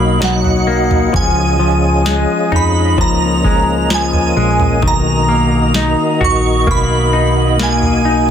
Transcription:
Already playing: B1 F#3 A#3 D#4 F#4 D#5 B5
0.20 F#3 F#5, snare
0.44 floor tom
0.67 A#3
0.91 floor tom
1.13 C#2 F3 C#4 F4 G#4 G#5, kick, floor tom
1.59 F3
2.05 G#3, snare
2.52 F2 D#4 B5, floor tom
2.98 C#2 F3 A#3 A#5, kick, floor tom
3.44 G#3, kick
3.90 F3 G#5, snare
4.13 floor tom
4.37 A#1 G#3
4.60 floor tom
4.82 B1 D#3 D#4 F#4, kick, floor tom
4.88 A#5
5.29 A#3
5.74 D#4, snare
6.21 A#1 F#4 C#6, floor tom
6.67 B1 A#3 B5, kick, floor tom
7.13 D#4
7.59 A#3 G#5, snare
7.82 floor tom
8.05 D#4

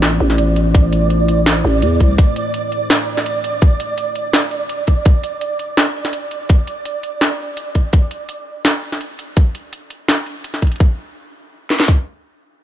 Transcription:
Already playing: A1 A3 E4 C5 D5
0.02 snare, closed hi-hat
0.20 A1
0.30 snare
0.38 closed hi-hat
0.56 closed hi-hat
0.74 kick, closed hi-hat
0.93 closed hi-hat
1.10 closed hi-hat
1.28 closed hi-hat
1.46 snare, closed hi-hat
1.65 A1
1.82 E2, closed hi-hat
2.00 C2, kick, closed hi-hat
2.18 D4, kick, closed hi-hat
2.36 closed hi-hat
2.54 closed hi-hat
2.72 closed hi-hat
2.90 snare, closed hi-hat
3.17 snare
3.26 closed hi-hat
3.44 closed hi-hat
3.62 kick, closed hi-hat
3.80 closed hi-hat
3.98 closed hi-hat
4.16 closed hi-hat
4.33 snare, closed hi-hat
4.51 closed hi-hat
4.69 closed hi-hat
4.87 kick, closed hi-hat
5.05 kick, closed hi-hat
5.24 closed hi-hat
5.41 closed hi-hat
5.59 closed hi-hat
5.77 snare, closed hi-hat
6.05 snare
6.13 closed hi-hat
6.31 closed hi-hat
6.49 kick, closed hi-hat
6.67 closed hi-hat
6.85 closed hi-hat
7.03 closed hi-hat
7.21 snare, closed hi-hat
7.57 closed hi-hat
7.75 kick, closed hi-hat
7.93 kick, closed hi-hat
8.11 closed hi-hat
8.29 closed hi-hat
8.65 snare, closed hi-hat
8.92 snare
9.01 closed hi-hat
9.19 closed hi-hat
9.37 kick, closed hi-hat
9.55 closed hi-hat
9.73 closed hi-hat
9.90 closed hi-hat
10.08 snare, closed hi-hat
10.26 closed hi-hat
10.44 closed hi-hat
10.54 snare
10.62 kick, closed hi-hat
10.67 closed hi-hat
10.72 closed hi-hat
10.76 closed hi-hat
10.80 kick
11.70 snare
11.80 snare
11.88 kick

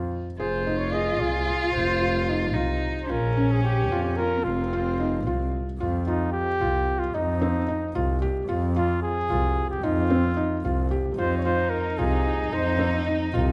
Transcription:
Already playing: F4
0.39 F1 F4 G#4 C5
0.67 D#4
0.78 C#5
0.92 G#4 D#5
1.20 C2 F4 G#4
1.47 F4
1.72 F1 C5
2.01 F4
2.29 D#4
2.54 C2 D#4 F4
3.02 C5
3.08 A#1 C#4 F4 A#4
3.37 C#4
3.52 G#4
3.63 G4
3.90 F2 F4
4.03 G4
4.17 F4 A#4
4.37 B3
4.43 F1 C4 F4
4.73 F4
5.00 D#4
5.25 C2 F4
5.79 F2 F4
6.06 D#4 F4
6.32 G4
6.60 C2 F4
6.99 F4
7.14 F2 D#4
7.42 C4
7.68 D#4
7.95 C2 F4
8.22 G4
8.48 F2 F4
8.76 F4
9.03 G#4
9.29 C2 F4
9.70 G4
9.82 F2 D#4 F4
10.10 C4
10.37 D#4
10.63 C2 F4
10.91 G4
11.16 F2 D#4 F4 C5
11.38 C#5
11.44 F4 C5
11.70 A#4
11.98 C2 F4 G#4
12.52 F2 D#4 C5
12.79 C4
13.07 D#4
13.33 C2 F4

